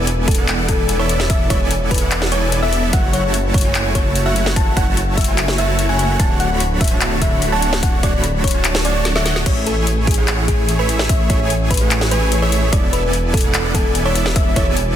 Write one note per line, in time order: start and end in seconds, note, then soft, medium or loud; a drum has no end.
0.00 2.91 E1 medium
0.00 0.36 B3 medium
0.00 0.36 E4 medium
0.00 0.36 A4 medium
0.00 0.12 B4 medium
0.00 0.36 D5 medium
0.00 0.36 G#5 medium
0.07 closed hi-hat medium
0.28 0.53 A4 loud
0.28 kick loud
0.28 closed hi-hat medium
0.31 closed hi-hat medium
0.35 0.66 B3 loud
0.35 0.66 E4 medium
0.35 0.66 A4 medium
0.35 0.66 D5 medium
0.35 0.66 F#5 loud
0.35 closed hi-hat medium
0.48 clap loud
0.48 closed hi-hat medium
0.69 0.97 B3 medium
0.69 0.97 E4 medium
0.69 0.97 A4 medium
0.69 0.87 A4 loud
0.69 0.97 D5 medium
0.69 0.97 G#5 loud
0.69 kick medium
0.69 closed hi-hat medium
0.89 closed hi-hat medium
0.99 1.27 B3 medium
0.99 1.27 E4 medium
0.99 1.27 A4 medium
0.99 1.18 C#5 loud
0.99 1.27 D5 medium
0.99 1.27 E5 medium
1.09 closed hi-hat medium
1.20 snare medium
1.30 1.58 B3 medium
1.30 1.58 E4 medium
1.30 1.58 A4 medium
1.30 1.58 D5 medium
1.30 1.58 E5 medium
1.30 1.42 E5 loud
1.30 kick loud
1.30 closed hi-hat medium
1.50 1.75 C#5 medium
1.50 kick loud
1.50 closed hi-hat medium
1.61 1.99 B3 medium
1.61 1.99 E4 medium
1.61 1.99 A4 medium
1.61 1.99 D5 medium
1.61 1.99 G#5 medium
1.71 closed hi-hat medium
1.91 2.16 B4 medium
1.91 kick medium
1.91 closed hi-hat medium
1.94 closed hi-hat medium
1.98 2.29 B3 medium
1.98 2.29 E4 medium
1.98 2.29 A4 medium
1.98 2.29 D5 medium
1.98 2.29 F#5 loud
1.98 closed hi-hat medium
2.11 clap loud
2.11 closed hi-hat medium
2.22 snare medium
2.32 2.60 B3 medium
2.32 2.60 E4 medium
2.32 2.60 A4 medium
2.32 2.50 C#5 medium
2.32 2.60 D5 medium
2.32 2.60 G#5 loud
2.32 closed hi-hat medium
2.52 closed hi-hat medium
2.62 2.91 B3 medium
2.62 2.91 E4 medium
2.62 2.91 A4 medium
2.62 2.91 D5 medium
2.62 2.81 E5 loud
2.62 2.91 E5 medium
2.73 closed hi-hat medium
2.93 6.18 F#1 medium
2.93 3.21 A3 medium
2.93 3.21 E4 medium
2.93 3.21 F#4 medium
2.93 3.05 F#5 loud
2.93 3.21 F#5 medium
2.93 kick loud
2.93 closed hi-hat medium
3.13 3.38 C#5 medium
3.13 closed hi-hat medium
3.24 3.62 A3 medium
3.24 3.62 E4 medium
3.24 3.62 F#4 medium
3.24 3.62 C#5 medium
3.24 3.62 A5 medium
3.34 closed hi-hat medium
3.54 3.79 C#5 medium
3.54 kick loud
3.54 closed hi-hat soft
3.58 closed hi-hat medium
3.61 3.93 A3 medium
3.61 3.93 E4 medium
3.61 3.93 F#4 medium
3.61 3.93 C#5 medium
3.61 3.93 G#5 loud
3.61 closed hi-hat medium
3.75 clap loud
3.75 closed hi-hat medium
3.95 4.23 A3 medium
3.95 4.23 E4 medium
3.95 4.23 F#4 medium
3.95 4.14 C#5 loud
3.95 4.23 C#5 medium
3.95 4.23 A5 loud
3.95 kick medium
3.95 closed hi-hat medium
4.15 closed hi-hat medium
4.26 4.54 A3 medium
4.26 4.54 E4 medium
4.26 4.54 F#4 medium
4.26 4.54 C#5 medium
4.26 4.44 E5 loud
4.26 4.54 F#5 loud
4.36 closed hi-hat medium
4.46 snare medium
4.56 4.85 A3 medium
4.56 4.85 E4 medium
4.56 4.85 C#5 medium
4.56 4.69 A5 loud
4.56 kick loud
4.56 closed hi-hat medium
4.77 5.01 F#5 medium
4.77 kick loud
4.77 closed hi-hat medium
4.87 5.25 A3 medium
4.87 5.25 E4 medium
4.87 5.25 F#4 medium
4.87 5.25 C#5 medium
4.87 5.25 A5 medium
4.97 closed hi-hat medium
5.17 5.42 E5 medium
5.17 kick medium
5.17 closed hi-hat soft
5.21 closed hi-hat medium
5.24 5.56 A3 medium
5.24 5.56 E4 medium
5.24 5.56 F#4 medium
5.24 5.56 C#5 medium
5.24 5.56 G#5 loud
5.24 closed hi-hat medium
5.38 clap loud
5.38 closed hi-hat medium
5.48 snare medium
5.58 5.87 A3 medium
5.58 5.87 E4 medium
5.58 5.87 F#4 medium
5.58 5.87 C#5 medium
5.58 5.77 E5 loud
5.58 5.87 A5 loud
5.58 closed hi-hat medium
5.79 closed hi-hat medium
5.89 6.17 A3 medium
5.89 6.17 E4 medium
5.89 6.17 F#4 medium
5.89 6.17 C#5 medium
5.89 6.17 F#5 medium
5.89 6.08 G#5 loud
5.99 closed hi-hat medium
6.20 9.44 D1 medium
6.20 6.48 A3 medium
6.20 6.48 D4 medium
6.20 6.48 F#4 medium
6.20 6.48 C#5 medium
6.20 6.48 F#5 medium
6.20 6.32 A5 loud
6.20 kick loud
6.20 closed hi-hat medium
6.40 6.65 F#5 medium
6.40 closed hi-hat medium
6.50 6.89 A3 medium
6.50 6.89 D4 medium
6.50 6.89 F#4 medium
6.50 6.89 C#5 medium
6.50 6.89 B5 medium
6.60 closed hi-hat medium
6.81 7.06 E5 medium
6.81 kick loud
6.81 closed hi-hat soft
6.84 closed hi-hat medium
6.88 7.19 A3 loud
6.88 7.19 D4 medium
6.88 7.19 F#4 medium
6.88 7.19 C#5 medium
6.88 7.19 A5 loud
6.88 closed hi-hat medium
7.01 clap loud
7.01 closed hi-hat medium
7.22 7.50 A3 medium
7.22 7.50 D4 medium
7.22 7.50 F#4 medium
7.22 7.50 C#5 medium
7.22 7.40 E5 loud
7.22 7.50 B5 loud
7.22 kick medium
7.22 closed hi-hat medium
7.42 closed hi-hat medium
7.52 7.80 A3 medium
7.52 7.80 D4 medium
7.52 7.80 F#4 medium
7.52 7.80 C#5 medium
7.52 7.80 F#5 medium
7.52 7.71 A5 loud
7.62 closed hi-hat medium
7.73 snare medium
7.83 8.11 A3 medium
7.83 8.11 D4 medium
7.83 8.11 F#4 medium
7.83 8.11 C#5 medium
7.83 7.95 F#5 loud
7.83 kick loud
7.83 closed hi-hat medium
8.03 8.28 D5 medium
8.03 kick loud
8.03 closed hi-hat medium
8.14 8.52 A3 medium
8.14 8.52 D4 medium
8.14 8.52 F#4 medium
8.14 8.52 C#5 medium
8.14 8.52 B5 medium
8.24 closed hi-hat medium
8.44 8.69 C#5 medium
8.44 kick medium
8.44 closed hi-hat soft
8.47 closed hi-hat medium
8.51 8.82 A3 loud
8.51 8.82 D4 medium
8.51 8.82 F#4 medium
8.51 8.82 C#5 medium
8.51 8.82 A5 loud
8.51 closed hi-hat medium
8.64 clap loud
8.64 closed hi-hat medium
8.75 snare medium
8.85 9.13 A3 medium
8.85 9.13 D4 medium
8.85 9.13 F#4 medium
8.85 9.13 C#5 medium
8.85 9.03 D5 loud
8.85 9.13 A5 medium
8.85 closed hi-hat medium
9.05 snare medium
9.05 closed hi-hat medium
9.16 9.44 A3 loud
9.16 9.44 D4 medium
9.16 9.44 F#4 medium
9.16 9.44 C#5 medium
9.16 9.34 E5 loud
9.16 9.44 F#5 loud
9.16 snare medium
9.26 snare medium
9.26 closed hi-hat medium
9.36 snare medium
9.46 12.71 A1 medium
9.46 9.74 A3 medium
9.46 9.74 E4 medium
9.46 9.74 G#4 medium
9.46 9.74 C#5 medium
9.46 9.59 C#5 loud
9.46 9.74 E5 medium
9.46 kick loud
9.46 closed hi-hat medium
9.46 crash medium
9.66 9.91 A4 medium
9.66 closed hi-hat medium
9.77 10.15 A3 medium
9.77 10.15 E4 medium
9.77 10.15 G#4 medium
9.77 10.15 C#5 medium
9.77 10.15 G#5 medium
9.87 closed hi-hat medium
10.07 10.32 G#4 medium
10.07 kick loud
10.07 closed hi-hat soft
10.11 closed hi-hat medium
10.14 10.46 A3 medium
10.14 10.46 E4 medium
10.14 10.46 G#4 medium
10.14 10.46 C#5 medium
10.14 10.46 F#5 loud
10.14 closed hi-hat medium
10.28 clap loud
10.28 closed hi-hat medium
10.48 10.76 A3 medium
10.48 10.76 E4 medium
10.48 10.76 G#4 medium
10.48 10.67 G#4 loud
10.48 10.76 C#5 medium
10.48 10.76 G#5 loud
10.48 kick medium
10.48 closed hi-hat medium
10.69 closed hi-hat medium
10.79 11.07 A3 medium
10.79 11.07 E4 medium
10.79 11.07 G#4 medium
10.79 10.97 B4 medium
10.79 11.07 C#5 medium
10.79 11.07 E5 medium
10.89 closed hi-hat medium
10.99 snare medium
11.09 11.38 A3 medium
11.09 11.38 E4 medium
11.09 11.38 G#4 medium
11.09 11.38 C#5 medium
11.09 11.22 E5 loud
11.09 11.38 E5 medium
11.09 kick loud
11.09 closed hi-hat medium
11.30 11.55 C#5 medium
11.30 kick loud
11.30 closed hi-hat medium
11.40 11.78 A3 medium
11.40 11.78 E4 medium
11.40 11.78 G#4 medium
11.40 11.78 C#5 medium
11.40 11.78 G#5 medium
11.50 closed hi-hat medium
11.71 11.95 B4 loud
11.71 kick medium
11.71 closed hi-hat medium
11.74 closed hi-hat medium
11.77 12.09 A3 loud
11.77 12.09 E4 medium
11.77 12.09 G#4 medium
11.77 12.09 C#5 medium
11.77 12.09 F#5 loud
11.77 closed hi-hat medium
11.91 clap loud
11.91 closed hi-hat medium
12.01 snare medium
12.11 12.40 A3 medium
12.11 12.40 E4 medium
12.11 12.40 G#4 medium
12.11 12.30 B4 loud
12.11 12.40 C#5 medium
12.11 12.40 G#5 loud
12.11 closed hi-hat medium
12.32 closed hi-hat medium
12.42 12.70 A3 medium
12.42 12.70 E4 medium
12.42 12.70 G#4 medium
12.42 12.70 C#5 medium
12.42 12.61 C#5 medium
12.42 12.70 E5 medium
12.52 closed hi-hat medium
12.73 14.96 E1 medium
12.73 13.01 B3 medium
12.73 13.01 E4 medium
12.73 13.01 A4 medium
12.73 12.85 D5 loud
12.73 13.01 D5 medium
12.73 kick loud
12.73 closed hi-hat medium
12.93 13.18 B4 medium
12.93 closed hi-hat medium
13.03 13.42 B3 medium
13.03 13.42 E4 medium
13.03 13.42 A4 medium
13.03 13.42 D5 medium
13.03 13.42 G#5 medium
13.13 closed hi-hat medium
13.34 13.59 A4 loud
13.34 kick loud
13.34 closed hi-hat medium
13.37 closed hi-hat medium
13.41 13.72 B3 medium
13.41 13.72 E4 medium
13.41 13.72 A4 medium
13.41 13.72 D5 medium
13.41 13.72 F#5 loud
13.41 closed hi-hat medium
13.54 clap loud
13.54 closed hi-hat medium
13.75 14.03 B3 medium
13.75 14.03 E4 medium
13.75 13.93 A4 loud
13.75 14.03 A4 medium
13.75 14.03 D5 medium
13.75 14.03 G#5 loud
13.75 kick medium
13.75 closed hi-hat medium
13.95 closed hi-hat medium
14.05 14.33 B3 medium
14.05 14.33 E4 medium
14.05 14.33 A4 medium
14.05 14.24 C#5 loud
14.05 14.33 D5 medium
14.05 14.33 E5 loud
14.15 closed hi-hat medium
14.26 snare medium
14.36 14.64 B3 medium
14.36 14.64 E4 medium
14.36 14.64 A4 medium
14.36 14.64 D5 medium
14.36 14.48 E5 loud
14.36 kick loud
14.36 closed hi-hat medium
14.56 14.81 C#5 medium
14.56 kick loud
14.56 closed hi-hat medium
14.67 14.96 B3 medium
14.67 14.96 E4 medium
14.67 14.96 A4 medium
14.67 14.96 D5 medium
14.67 14.96 G#5 medium
14.77 closed hi-hat medium